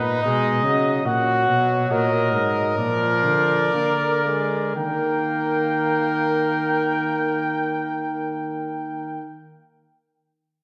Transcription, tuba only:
0.00 0.24 A#2 medium
0.24 0.63 B2 medium
0.64 1.04 C#3 medium
1.05 1.49 A#2 medium
1.47 1.90 B2 medium
1.90 2.35 A#2 medium
2.33 2.77 G#2 medium
2.78 3.26 A#2 medium
3.25 3.74 D3 medium
3.75 4.75 D3 medium
4.76 9.31 D#3 medium

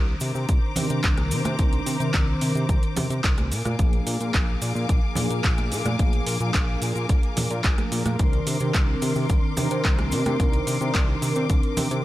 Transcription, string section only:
0.00 3.48 C5 medium
0.00 3.48 A#5 medium
0.00 3.48 D6 medium
3.52 12.05 A#4 medium
3.52 8.16 F5 medium
3.52 8.16 G#5 medium
3.52 8.16 D6 medium
8.19 12.05 C6 medium
8.19 12.05 D6 medium

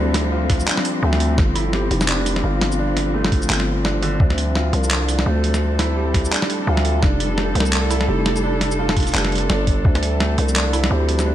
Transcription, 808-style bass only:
0.00 0.66 D2 medium
1.03 1.37 D2 loud
1.38 1.90 G1 loud
1.91 2.43 F1 loud
2.44 3.48 G1 loud
3.50 4.19 G1 loud
4.20 4.72 D2 medium
4.73 5.25 C2 loud
5.26 6.31 D2 loud
6.67 7.01 D2 medium
7.03 7.54 F1 loud
7.55 8.07 C2 loud
8.08 9.13 F1 medium
9.14 9.48 F1 loud
9.50 9.84 G1 loud
9.85 10.37 D2 loud
10.38 10.90 C2 loud
10.91 11.35 D2 loud

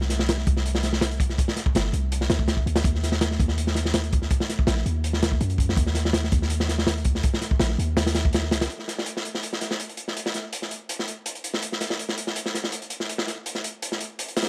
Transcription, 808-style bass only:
0.00 0.45 C2 medium
0.47 1.37 C2 medium
1.75 1.91 G1 medium
1.93 2.29 C2 medium
2.30 2.65 D2 medium
2.66 2.83 D2 medium
2.84 3.38 D#2 loud
3.40 4.30 D#2 medium
4.68 4.84 A#1 loud
4.86 5.39 D#2 medium
5.41 5.76 F#2 loud
5.77 6.31 D#2 loud
6.32 7.22 D#2 medium
7.60 7.77 A#1 loud
7.78 8.53 D#2 medium
8.52 8.68 C#2 medium

